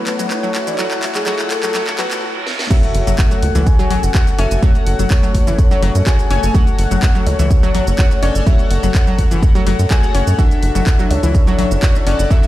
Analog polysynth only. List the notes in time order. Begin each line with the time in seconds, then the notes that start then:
Already playing: F#4 A4 C#5 F#5
0.79 F#4 A4 C#5 F#5
1.27 F#4 A4 C#5 F#5
1.75 F#4 A4 C#5 F#5
1.99 F#4 A4 C#5 F#5
2.71 F#4 A4 C#5 F#5
4.39 F#4 A4 C#5 G#5
4.63 F#4 A4 C#5 F#5
6.31 F#4 A4 C#5 G#5
6.55 F#4 A4 C#5 F#5
8.23 F#4 A4 C#5 G#5
8.47 F#4 A4 C#5 F#5
10.03 F#4 A4 C#5 F#5
10.39 D4 F#4 A4 E5
12.07 F#4 A4 D5 F#5
12.31 F#4 A4 D5 E5